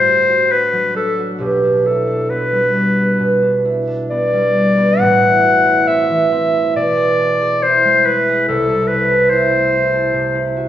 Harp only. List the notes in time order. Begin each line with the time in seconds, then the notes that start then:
Already playing: A2 F#4
0.08 G4
0.29 F#4
0.51 D4
0.73 F#3
0.94 D4
1.19 F#4
1.38 B1 B2
1.64 D4
1.85 E4
2.07 D4
2.30 B3
2.52 G3
2.74 D4
2.98 B3
3.19 B2
3.42 D4
3.65 E4
3.87 D4
4.10 B3
4.33 G3
4.57 D4
4.77 B3
4.99 A1 A2
5.22 E4
5.44 F#4
5.65 E4
5.88 C4
6.09 E3
6.32 C4
6.54 E4
6.75 B2
6.97 G#4
7.19 A4
7.41 G#4
7.63 E4
7.85 G#3
8.07 E4
8.29 G#4
8.48 C2 C3
8.69 A4
8.91 B4
9.11 A4
9.33 E4
9.53 A3
9.73 E4
9.93 A4
10.14 C3
10.35 E4
10.56 F#4